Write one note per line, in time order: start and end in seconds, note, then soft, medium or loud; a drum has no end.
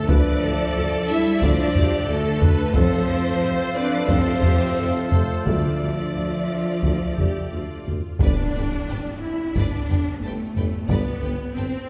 0.00 2.74 F3 medium
0.00 2.70 A3 medium
0.00 2.71 A4 medium
0.00 2.71 E5 medium
0.07 0.17 D2 medium
0.07 0.23 D2 loud
0.07 1.09 F3 loud
0.07 1.06 D4 loud
0.07 0.42 B4 loud
0.07 1.07 D5 loud
0.07 1.10 D5 loud
0.07 taiko loud
0.41 0.56 D2 medium
0.41 0.51 D2 medium
0.41 1.42 A4 loud
0.76 0.84 D2 medium
0.76 0.90 D2 medium
1.08 1.42 G3 loud
1.08 1.42 E4 loud
1.08 1.42 E5 loud
1.08 1.43 E5 loud
1.41 1.50 D2 loud
1.41 1.56 D2 loud
1.41 2.09 F3 loud
1.41 2.08 D4 loud
1.41 1.75 F4 medium
1.41 2.08 D5 loud
1.41 2.09 D5 loud
1.41 taiko medium
1.75 1.88 D2 medium
1.75 1.84 D2 medium
1.75 2.09 G4 medium
1.75 taiko low medium
2.08 2.17 D2 medium
2.08 2.22 D2 medium
2.08 2.74 D3 loud
2.08 2.74 A3 loud
2.08 2.42 A4 medium
2.08 2.75 A4 loud
2.08 2.76 A4 loud
2.41 2.55 D2 medium
2.41 2.50 D2 medium
2.41 2.75 B4 loud
2.41 taiko low medium
2.74 2.89 F1 loud
2.74 2.83 F2 loud
2.74 3.74 F3 loud
2.74 7.85 A3 loud
2.74 3.76 C4 loud
2.74 7.85 F4 loud
2.74 7.84 A4 loud
2.74 3.08 A4 loud
2.74 3.74 C5 loud
2.74 3.76 C5 loud
2.74 5.46 F5 loud
2.74 taiko loud
3.09 3.22 F1 medium
3.09 3.18 F2 medium
3.09 3.42 A4 medium
3.42 3.56 F1 medium
3.42 3.50 F2 medium
3.42 3.77 C5 medium
3.76 4.08 F3 medium
3.76 4.09 D4 loud
3.76 4.10 B4 medium
3.76 4.09 D5 loud
3.76 4.09 D5 medium
4.09 4.23 F1 medium
4.09 4.17 F2 loud
4.09 5.10 F3 medium
4.09 4.95 C4 loud
4.09 4.43 A4 medium
4.09 5.12 C5 loud
4.09 5.10 C5 loud
4.09 taiko medium
4.42 4.57 F1 medium
4.42 4.52 F2 medium
4.42 4.76 G4 medium
4.42 taiko low medium
4.77 4.91 F1 medium
4.77 4.86 F2 soft
4.77 5.12 A4 medium
5.11 5.26 F1 medium
5.11 5.20 F2 medium
5.11 5.46 C3 medium
5.11 5.46 A3 medium
5.11 5.46 A4 medium
5.11 5.47 C5 medium
5.11 taiko low medium
5.46 5.55 D2 medium
5.46 5.61 D2 medium
5.46 6.46 D3 loud
5.46 7.87 F3 medium
5.46 7.87 D4 medium
5.46 6.07 F4 medium
5.46 7.83 D5 medium
5.46 7.90 E5 medium
5.46 taiko medium
5.81 5.89 D2 medium
5.81 5.95 D2 soft
6.15 6.29 D2 soft
6.15 6.24 D2 soft
6.15 7.14 F4 medium
6.83 6.92 D2 medium
6.83 6.98 D2 medium
6.83 taiko medium
7.17 7.26 D2 medium
7.17 7.32 D2 soft
7.17 7.52 G4 medium
7.17 taiko low medium
7.52 7.66 D2 medium
7.52 7.61 D2 soft
7.52 8.21 F4 medium
7.86 8.00 D2 soft
7.86 7.94 D2 soft
7.86 taiko low medium
8.20 8.29 G1 medium
8.20 8.35 G1 medium
8.20 8.46 A3 medium
8.20 8.46 B3 medium
8.20 9.18 D4 medium
8.20 8.54 B4 medium
8.20 8.53 D5 medium
8.20 taiko medium
8.20 impact medium
8.55 8.63 G1 soft
8.55 8.69 G1 soft
8.55 8.65 B4 soft
8.55 8.65 D5 soft
8.55 8.64 G5 soft
8.89 9.02 G1 soft
8.89 8.97 G1 soft
8.89 8.97 B4 soft
8.89 8.97 G5 soft
8.89 8.98 A5 soft
9.22 9.55 E4 medium
9.22 9.56 E4 medium
9.55 9.69 G1 medium
9.55 9.64 G1 medium
9.55 9.79 A3 medium
9.55 9.79 B3 medium
9.55 10.23 D4 medium
9.55 9.88 B4 medium
9.55 9.87 D5 medium
9.55 taiko medium
9.89 9.97 G1 medium
9.89 10.03 G1 soft
9.89 9.98 B4 soft
9.89 9.98 D5 medium
9.89 9.97 G5 soft
9.89 taiko low soft
10.22 10.30 G1 soft
10.22 10.36 G1 medium
10.22 10.88 A3 medium
10.22 10.90 A3 medium
10.22 10.33 B4 soft
10.22 10.33 G5 medium
10.22 10.30 A5 medium
10.56 10.64 G1 medium
10.56 10.69 G1 medium
10.56 10.65 B4 medium
10.56 10.65 D5 medium
10.56 10.65 G5 medium
10.56 taiko low soft
10.88 10.97 G1 medium
10.88 11.03 G1 medium
10.88 11.13 A3 medium
10.88 11.56 B3 medium
10.88 11.55 B3 medium
10.88 11.13 B3 medium
10.88 11.21 B4 medium
10.88 11.20 D5 medium
10.88 taiko loud
11.22 11.36 G1 soft
11.22 11.31 G1 medium
11.22 11.32 B4 soft
11.22 11.32 D5 soft
11.22 11.31 G5 medium
11.55 11.69 G1 soft
11.55 11.65 G1 medium
11.55 11.89 C4 medium
11.55 11.64 B4 medium
11.55 11.64 G5 medium
11.55 11.65 A5 soft